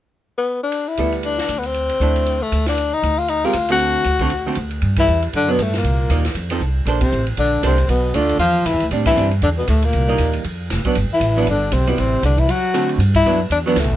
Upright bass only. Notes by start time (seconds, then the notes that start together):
0.98 D2
1.48 D2
2.00 D2
2.52 D2
3.02 D2
3.54 D2
4.05 D2
4.56 D2
4.82 G2
5.08 E2
5.33 F#2
5.58 G2
5.83 C2
6.09 D#2
6.34 F2
6.60 C2
6.85 A#1
7.12 A1
7.37 A#1
7.63 C2
7.88 B1
8.14 D2
8.38 E2
8.65 G#2
8.73 E2
8.82 D2
8.90 A2
9.16 G2
9.42 E2
9.68 D2
9.94 C2
10.19 D#2
10.44 F2
10.70 F1
10.96 G1
11.10 muted upright bass stroke
11.20 A1
11.46 G1
11.72 B1
11.98 A1
12.23 C2
12.98 G2
13.24 F#2
13.50 E2
13.76 D2
13.84 B1
13.93 G1